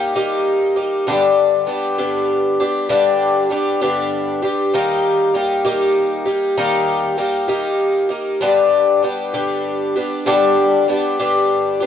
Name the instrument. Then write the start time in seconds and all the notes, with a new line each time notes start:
twelve-string acoustic guitar
Already playing: G3 A#3 D#4 G4
0.15 D#3 G3 A#3 D#4 G4
0.76 A#3 D#4 G4
1.07 G2 D3 G3 B3 D4 G4
1.66 G3 B3 D4 G4
1.98 G2 D3 G3 B3 D4 G4
2.60 G3 B3 D4 G4
2.89 G2 D3 G3 B3 D4 G4
3.50 G3 B3 D4 G4
3.81 G2 D3 G3 B3 D4 G4
4.42 G3 B3 D4 G4
4.74 D#3 G3 A#3 D#4 G4
5.34 G3 A#3 D#4 G4
5.65 D#3 G3 A#3 D#4 G4
6.25 A#3 D#4 G4
6.57 D#3 G3 A#3 D#4 G4
7.17 G3 A#3 D#4 G4
7.48 D#3 G3 A#3 D#4 G4
8.09 A#3 D#4 G4
8.41 G2 D3 G3 B3 D4 G4
9.03 G3 B3 D4 G4
9.34 G2 D3 G3 B3 D4 G4
9.96 G3 B3 D4 G4
10.26 G2 D3 G3 B3 D4 G4
10.88 G3 B3 D4 G4
11.19 G2 D3 G3 B3 D4 G4
11.80 G3 B3 D4 G4